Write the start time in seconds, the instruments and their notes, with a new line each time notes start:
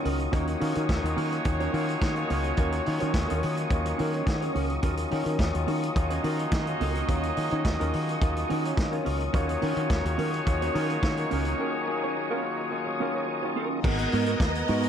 Already playing: tine electric piano D#3 F#3 A#3 C#4 D#4 F4 F#4, tonewheel organ A#4 D#5 C#6 D#6
0.04 fingered electric bass C#2, clean electric guitar C#4 F#4 A#4, open hi-hat
0.19 muted clean electric guitar stroke, closed hi-hat
0.31 fingered electric bass D#2, tine electric piano D#3 F#3 A#3 C#4 D#4, horn section A#3 C#4 F#4 C#5, clean electric guitar C#4 F#4 A#4, kick, closed hi-hat
0.47 muted clean electric guitar stroke, closed hi-hat
0.60 tine electric piano D#3 F#3 A#3 C#4 F4, fingered electric bass D#3, clean electric guitar C#4 F#4 A#4, open hi-hat
0.75 fingered electric bass D#3, clean electric guitar C#4 F#4 A#4, closed hi-hat
0.89 fingered electric bass D#2, kick, snare, closed hi-hat
1.03 fingered electric bass D#2, tine electric piano D#3 F#3 A#3 C#4 F4, muted clean electric guitar stroke, closed hi-hat
1.16 fingered electric bass D#3, clean electric guitar C#4 F#4 A#4, open hi-hat
1.32 muted clean electric guitar stroke, closed hi-hat
1.45 fingered electric bass D#2, tine electric piano D#3 F#3 A#3 C#4 F#4, muted clean electric guitar stroke, kick, closed hi-hat
1.59 clean electric guitar C#4 F#4 C#5, closed hi-hat
1.73 tine electric piano D#3 F#3 A#3 C#4 F4, fingered electric bass D#3, clean electric guitar C#4 F#4 A#4, open hi-hat
1.88 muted clean electric guitar stroke, closed hi-hat
2.01 fingered electric bass D#3, muted clean electric guitar stroke, kick, snare, closed hi-hat
2.15 tine electric piano D#3 F#3 A#3 C#4 F4, muted clean electric guitar stroke, closed hi-hat
2.30 fingered electric bass C#2, clean electric guitar C#4 F#4 A#4, open hi-hat
2.44 clean electric guitar C#4 F#4 A#4, closed hi-hat
2.57 fingered electric bass D#2, tine electric piano D#3 F#3 A#3 C#4 F4, clean electric guitar C#4 F#4 A#4, kick, closed hi-hat
2.72 muted clean electric guitar stroke, closed hi-hat
2.86 tine electric piano D#3 F#3 A#3 C#4 F4, fingered electric bass D#3, muted clean electric guitar stroke, open hi-hat
3.00 fingered electric bass D#3, clean electric guitar C#4 F#4 C#5, closed hi-hat
3.14 fingered electric bass D#2, muted clean electric guitar stroke, kick, snare, closed hi-hat
3.28 fingered electric bass D#2, tine electric piano D#3 F#3 A#3 C#4 F4, clean electric guitar C#4 F#4 A#4, closed hi-hat
3.41 fingered electric bass D#3, muted clean electric guitar stroke, open hi-hat
3.57 muted clean electric guitar stroke, closed hi-hat
3.70 fingered electric bass D#2, tine electric piano D#3 F#3 A#3 C#4 F4, muted clean electric guitar stroke, kick, closed hi-hat
3.85 muted clean electric guitar stroke, closed hi-hat
3.98 tine electric piano D#3 F#3 A#3 C#4 D#4, fingered electric bass D#3, clean electric guitar C#4 F#4 A#4, open hi-hat
4.14 clean electric guitar C#4 F#4 C#5, closed hi-hat
4.27 fingered electric bass D#3, tine electric piano F#5, muted clean electric guitar stroke, kick, snare, closed hi-hat
4.41 tine electric piano D#3 F#3 A#3 C#4 G#4, clean electric guitar C#4 F#4 C#5, closed hi-hat
4.54 fingered electric bass C#2, clean electric guitar C#4 F#4 A#4, tine electric piano C#5, open hi-hat
4.69 muted clean electric guitar stroke, closed hi-hat
4.82 fingered electric bass D#2, tine electric piano D#3 F#3 A#3 C#4 F4, clean electric guitar C#4 F#4 A#4, kick, closed hi-hat
4.97 muted clean electric guitar stroke, closed hi-hat
5.11 tine electric piano D#3 F#3 A#3 C#4 D#4, fingered electric bass D#3, clean electric guitar C#4 F#4 A#4, open hi-hat
5.25 fingered electric bass D#3, clean electric guitar C#4 F#4 A#4, closed hi-hat
5.39 fingered electric bass D#2, kick, snare, closed hi-hat
5.54 fingered electric bass D#2, tine electric piano D#3 F#3 A#3 C#4 F4, muted clean electric guitar stroke, closed hi-hat
5.67 fingered electric bass D#3, clean electric guitar C#4 F#4 A#4, open hi-hat
5.82 muted clean electric guitar stroke, closed hi-hat
5.95 fingered electric bass D#2, tine electric piano D#3 F#3 A#3 C#4 F4, horn section A#3 D#4 F#4 D#5, muted clean electric guitar stroke, kick, closed hi-hat
6.10 clean electric guitar C#4 F#4 C#5, closed hi-hat
6.23 tine electric piano D#3 F#3 A#3 C#4 F4, fingered electric bass D#3, clean electric guitar C#4 F#4 A#4, open hi-hat
6.39 muted clean electric guitar stroke, closed hi-hat
6.51 fingered electric bass D#3, muted clean electric guitar stroke, kick, snare, closed hi-hat
6.67 tine electric piano D#3 F#3 A#3 C#4 F4, muted clean electric guitar stroke, closed hi-hat
6.81 fingered electric bass C#2, clean electric guitar C#4 F#4 A#4, open hi-hat
6.95 clean electric guitar C#4 F#4 A#4, closed hi-hat
7.09 fingered electric bass D#2, tine electric piano D#3 F#3 A#3 C#4 F4, clean electric guitar C#4 F#4 A#4, kick, closed hi-hat
7.23 muted clean electric guitar stroke, closed hi-hat
7.36 tine electric piano D#3 F#3 A#3 C#4 G#4, fingered electric bass D#3, muted clean electric guitar stroke, open hi-hat
7.51 fingered electric bass D#3, clean electric guitar C#4 F#4 C#5, closed hi-hat
7.65 fingered electric bass D#2, muted clean electric guitar stroke, kick, snare, closed hi-hat
7.79 fingered electric bass D#2, tine electric piano D#3 F#3 A#3 C#4 F4, clean electric guitar C#4 F#4 A#4, closed hi-hat
7.93 fingered electric bass D#3, muted clean electric guitar stroke, open hi-hat
8.09 muted clean electric guitar stroke, closed hi-hat
8.21 fingered electric bass D#2, tine electric piano D#3 F#3 A#3 C#4 F4, muted clean electric guitar stroke, kick, closed hi-hat
8.36 muted clean electric guitar stroke, closed hi-hat
8.49 tine electric piano D#3 F#3 A#3 C#4 F#4, fingered electric bass D#3, clean electric guitar C#4 F#4 A#4, open hi-hat
8.65 clean electric guitar C#4 F#4 C#5, closed hi-hat
8.77 fingered electric bass D#3, muted clean electric guitar stroke, kick, snare, closed hi-hat
8.92 tine electric piano D#3 F#3 A#3 C#4 F4, clean electric guitar C#4 F#4 C#5, closed hi-hat
9.04 fingered electric bass C#2, clean electric guitar C#4 F#4 A#4, open hi-hat
9.20 muted clean electric guitar stroke, closed hi-hat
9.33 fingered electric bass D#2, tine electric piano D#3 F#3 A#3 C#4 F4, horn section A#3 C#4 F#4 C#5, clean electric guitar C#4 F#4 A#4, kick, closed hi-hat
9.49 muted clean electric guitar stroke, closed hi-hat
9.61 tine electric piano D#3 F#3 A#3 C#4 F4, fingered electric bass D#3, clean electric guitar C#4 F#4 A#4, open hi-hat
9.77 fingered electric bass D#3, clean electric guitar C#4 F#4 A#4, closed hi-hat
9.90 fingered electric bass D#2, muted clean electric guitar stroke, kick, snare, closed hi-hat
10.05 fingered electric bass D#2, tine electric piano D#3 F#3 A#3 C#4 G#4, muted clean electric guitar stroke, closed hi-hat
10.18 fingered electric bass D#3, clean electric guitar C#4 F#4 A#4, open hi-hat
10.33 muted clean electric guitar stroke, closed hi-hat
10.46 fingered electric bass D#2, tine electric piano D#3 F#3 A#3 C#4 F4, muted clean electric guitar stroke, kick, closed hi-hat
10.61 clean electric guitar C#4 F#4 C#5, closed hi-hat
10.74 tine electric piano D#3 F#3 A#3 C#4 F4, fingered electric bass D#3, clean electric guitar C#4 F#4 A#4, open hi-hat
10.90 muted clean electric guitar stroke, closed hi-hat
11.03 fingered electric bass D#3, muted clean electric guitar stroke, kick, snare, closed hi-hat
11.17 tine electric piano D#3 F#3 A#3 C#4 D#4, muted clean electric guitar stroke, closed hi-hat
11.31 fingered electric bass C#2, clean electric guitar C#4 F#4 A#4, open hi-hat
11.45 clean electric guitar C#4 F#4 A#4, closed hi-hat
11.59 tine electric piano D#3 F#3 A#3 C#4 G#4, clean electric guitar C#4 F#4 A#4
11.74 muted clean electric guitar stroke
11.87 tine electric piano D#3 F#3 A#3 C#4 G#4, muted clean electric guitar stroke
12.04 clean electric guitar C#4 F#4 C#5
12.16 muted clean electric guitar stroke
12.30 tine electric piano D#3 F#3 A#3 C#4 F4, clean electric guitar C#4 F#4 A#4
12.44 muted clean electric guitar stroke
12.59 muted clean electric guitar stroke
12.71 tine electric piano D#3 F#3 A#3 C#4 F4, muted clean electric guitar stroke
12.86 muted clean electric guitar stroke
13.00 tine electric piano D#3 F#3 A#3 C#4 F4, clean electric guitar C#4 F#4 A#4
13.15 clean electric guitar C#4 F#4 C#5
13.28 muted clean electric guitar stroke
13.42 tine electric piano D#3 F#3 A#3 C#4 F4, clean electric guitar C#4 F#4 C#5
13.56 clean electric guitar C#4 F#4 A#4
13.71 muted clean electric guitar stroke
13.84 fingered electric bass G#1, tine electric piano G#3 B3 D#4 F#4 A#4, clean electric guitar B3 F#4 A#4, string section B3 A#4 D#5, tonewheel organ D#5 F#5 G#5 A#5, kick, crash
13.99 muted clean electric guitar stroke, closed hi-hat
14.12 fingered electric bass G#2, clean electric guitar B3 F#4 A#4, open hi-hat
14.26 clean electric guitar B3 F#4 A#4, closed hi-hat
14.40 fingered electric bass D#2, muted clean electric guitar stroke, kick, snare, closed hi-hat
14.55 muted clean electric guitar stroke, closed hi-hat
14.68 fingered electric bass G#2, tine electric piano G#3 B3 D#4 F#4 A#4, clean electric guitar B3 F#4 A#4, open hi-hat
14.83 tine electric piano G#3 B3 D#4 F#4 A#4, muted clean electric guitar stroke, closed hi-hat